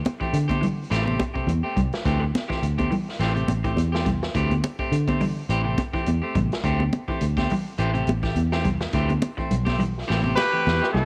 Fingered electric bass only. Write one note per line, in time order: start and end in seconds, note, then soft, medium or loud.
0.33 0.84 D3 medium
0.91 1.16 A1 medium
1.47 1.61 E2 loud
1.77 1.90 C2 medium
2.05 2.30 D2 loud
2.62 2.88 D2 medium
3.19 3.45 A1 medium
3.48 3.73 A1 medium
3.76 4.27 E2 medium
4.36 4.60 D2 medium
4.92 5.42 D3 medium
5.49 5.74 A1 medium
6.07 6.21 E2 medium
6.35 6.49 A1 medium
6.64 6.89 D2 loud
7.21 7.46 D2 medium
7.78 8.04 A1 medium
8.07 8.33 A1 medium
8.35 8.86 E2 loud
8.93 9.19 D2 medium
9.52 10.02 B1 medium
10.10 10.34 A1 medium
10.67 10.80 E2 loud
10.94 11.05 C2 medium